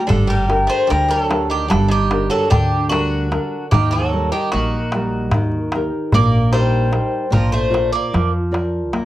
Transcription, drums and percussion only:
0.10 darbuka dum medium
0.30 darbuka tek soft
0.49 darbuka tek medium
0.91 darbuka tek medium
1.31 darbuka tek medium
1.71 darbuka tek medium
2.11 darbuka tek medium
2.31 darbuka tek soft
2.52 darbuka dum medium
2.72 darbuka tek soft
2.92 darbuka tek medium
3.32 darbuka tek medium
3.72 darbuka dum medium
3.92 darbuka tek soft
4.32 darbuka tek soft
4.52 darbuka tek medium
4.92 darbuka tek medium
5.31 darbuka tek medium
5.31 darbuka dum medium
5.52 darbuka tek soft
5.72 darbuka tek medium
6.13 darbuka dum medium
6.33 darbuka tek soft
6.53 darbuka tek medium
6.74 darbuka tek soft
6.93 darbuka tek medium
7.33 darbuka dum medium
7.53 darbuka tek soft
7.74 darbuka tek medium
8.14 darbuka tek medium
8.54 darbuka tek medium
8.93 darbuka tek medium

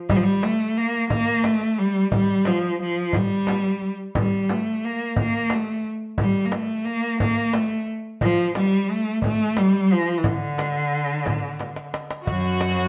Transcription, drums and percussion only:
0.10 darbuka dum loud
0.10 frame drum medium
0.43 darbuka tek medium
0.43 frame drum medium
0.77 darbuka ka soft
1.10 frame drum medium
1.10 darbuka dum loud
1.44 darbuka tek medium
1.44 frame drum medium
1.61 darbuka ka soft
1.78 darbuka ka soft
2.12 darbuka dum medium
2.12 frame drum medium
2.45 darbuka tek medium
2.45 frame drum medium
2.63 darbuka ka soft
2.80 darbuka ka soft
3.13 darbuka dum medium
3.13 frame drum medium
3.47 darbuka tek medium
3.47 frame drum medium
3.64 darbuka ka soft
3.82 darbuka ka soft
4.15 darbuka dum medium
4.15 frame drum loud
4.49 frame drum medium
4.84 darbuka ka soft
5.16 frame drum medium
5.16 darbuka dum medium
5.50 darbuka tek medium
5.50 frame drum medium
5.67 darbuka ka soft
5.84 darbuka ka soft
6.18 darbuka dum medium
6.18 frame drum medium
6.52 darbuka tek medium
6.52 frame drum medium
6.86 darbuka ka soft
7.20 darbuka dum medium
7.20 frame drum medium
7.54 darbuka tek medium
7.54 frame drum medium
7.70 darbuka ka soft
7.87 darbuka ka soft
8.21 darbuka dum medium
8.21 frame drum loud
8.55 darbuka tek medium
8.55 frame drum medium
8.89 darbuka ka soft
9.22 darbuka dum medium
9.22 frame drum medium
9.57 darbuka tek medium
9.57 frame drum medium
9.74 darbuka ka soft
9.90 darbuka ka soft
10.24 frame drum medium
10.24 darbuka dum medium
10.58 darbuka tek medium
10.58 frame drum medium
10.75 darbuka ka soft
10.93 darbuka ka soft
11.26 frame drum medium
11.26 darbuka dum medium
11.59 darbuka tek soft
11.59 frame drum medium
11.76 darbuka ka medium
11.94 darbuka tek medium
12.11 darbuka ka medium
12.27 darbuka dum medium
12.61 darbuka tek medium
12.77 darbuka ka soft

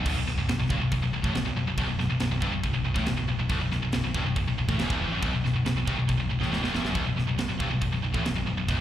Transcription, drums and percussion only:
0.06 kick loud
0.06 crash loud
0.06 crash medium
0.28 snare soft
0.49 snare loud
0.49 crash medium
0.70 kick loud
0.92 kick medium
0.92 crash medium
1.24 kick loud
1.35 snare loud
1.35 crash medium
1.78 kick loud
1.78 crash medium
2.00 snare soft
2.20 snare loud
2.20 crash medium
2.42 kick loud
2.63 kick medium
2.63 crash medium
2.96 kick loud
2.96 snare soft
3.06 snare loud
3.06 crash medium
3.49 kick loud
3.49 crash medium
3.71 snare soft
3.92 snare loud
3.92 crash medium
4.14 kick loud
4.36 kick medium
4.36 crash medium
4.69 kick loud
4.69 snare soft
4.79 snare loud
4.79 crash medium
4.90 kick loud
5.22 kick loud
5.22 crash medium
5.45 snare soft
5.66 snare loud
5.66 crash medium
5.88 kick loud
6.09 kick medium
6.09 crash medium
6.42 snare soft
6.53 snare medium
6.64 snare medium
6.75 snare medium
6.85 snare medium
6.95 kick loud
6.95 crash medium
7.18 snare soft
7.38 snare loud
7.38 crash medium
7.60 kick loud
7.82 kick medium
7.82 crash medium
8.14 kick loud
8.25 snare loud
8.25 crash medium
8.69 kick loud
8.69 crash medium

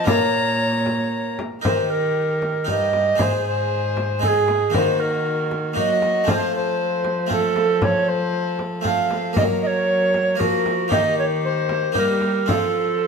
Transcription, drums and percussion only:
0.07 frame drum medium
0.86 frame drum soft
1.39 frame drum medium
1.65 frame drum medium
2.42 frame drum soft
2.68 frame drum soft
2.93 frame drum soft
3.19 frame drum medium
3.97 frame drum soft
4.23 frame drum soft
4.48 frame drum soft
4.74 frame drum medium
5.51 frame drum soft
5.77 frame drum soft
6.02 frame drum soft
6.28 frame drum medium
7.05 frame drum soft
7.31 frame drum soft
7.56 frame drum soft
7.82 frame drum medium
8.59 frame drum soft
8.85 frame drum soft
9.11 frame drum soft
9.37 frame drum medium
10.14 frame drum soft
10.41 frame drum soft
10.66 frame drum soft
10.92 frame drum medium
11.69 frame drum soft
11.95 frame drum soft
12.21 frame drum soft
12.49 frame drum medium

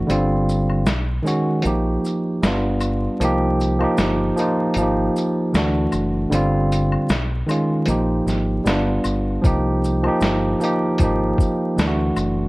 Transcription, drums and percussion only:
0.10 closed hi-hat medium
0.10 maracas medium
0.49 shaker soft
0.49 maracas soft
0.70 high woodblock medium
0.86 snare loud
0.86 closed hi-hat medium
0.86 maracas medium
1.26 closed hi-hat soft
1.26 maracas soft
1.26 shaker soft
1.62 closed hi-hat medium
1.62 maracas medium
2.05 maracas medium
2.05 shaker soft
2.43 snare loud
2.43 closed hi-hat medium
2.43 maracas medium
2.81 high woodblock medium
2.81 maracas soft
2.81 shaker soft
3.21 closed hi-hat medium
3.21 maracas medium
3.60 maracas soft
3.60 shaker soft
3.81 high woodblock medium
3.98 snare medium
3.98 closed hi-hat medium
3.98 maracas medium
4.37 closed hi-hat soft
4.37 maracas soft
4.37 shaker soft
4.74 closed hi-hat medium
4.74 maracas medium
5.16 maracas medium
5.16 shaker soft
5.54 snare loud
5.54 closed hi-hat medium
5.54 maracas medium
5.92 high woodblock medium
5.92 maracas soft
5.92 shaker soft
6.32 closed hi-hat medium
6.32 maracas medium
6.72 closed hi-hat soft
6.72 maracas soft
6.72 shaker soft
6.92 high woodblock medium
7.09 snare loud
7.09 closed hi-hat medium
7.09 maracas medium
7.49 closed hi-hat soft
7.49 high woodblock medium
7.49 maracas soft
7.49 shaker soft
7.86 closed hi-hat medium
7.86 maracas medium
8.28 snare soft
8.28 maracas medium
8.28 shaker soft
8.66 snare loud
8.66 closed hi-hat medium
8.66 maracas medium
9.04 high woodblock medium
9.04 maracas soft
9.04 shaker soft
9.44 kick loud
9.44 closed hi-hat medium
9.44 maracas medium
9.84 maracas soft
9.84 shaker soft
10.04 high woodblock medium
10.21 snare loud
10.21 closed hi-hat medium
10.21 maracas medium
10.61 closed hi-hat soft
10.61 maracas soft
10.61 shaker soft
10.98 kick medium
10.98 closed hi-hat medium
10.98 maracas medium
11.38 kick medium
11.38 maracas medium
11.42 shaker soft
11.78 snare loud
11.78 closed hi-hat medium
11.78 maracas medium
12.16 high woodblock medium
12.16 maracas soft
12.16 shaker soft

